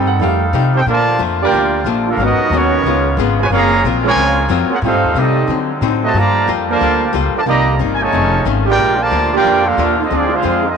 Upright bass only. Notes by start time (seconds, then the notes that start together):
Already playing: G2
0.20 F2
0.53 C3
0.86 A#2
1.19 F2
1.51 D2
1.84 A#1
2.17 G#1
2.38 muted upright bass stroke
2.50 D#2
2.83 C#2
3.17 G#1
3.49 F#1
3.84 A#1
4.16 C#2
4.49 F2
4.69 muted upright bass stroke
4.82 A2
4.93 G2
5.04 D#2
5.14 C3
5.48 D3
5.81 A2
6.14 G2
6.47 F2
6.81 D2
7.14 C#2
7.34 muted upright bass stroke
7.46 C2
7.79 G1
8.13 F1
8.45 G#1
8.78 A#1
9.11 D2
9.44 F2
9.77 D#2
10.11 D2
10.44 F2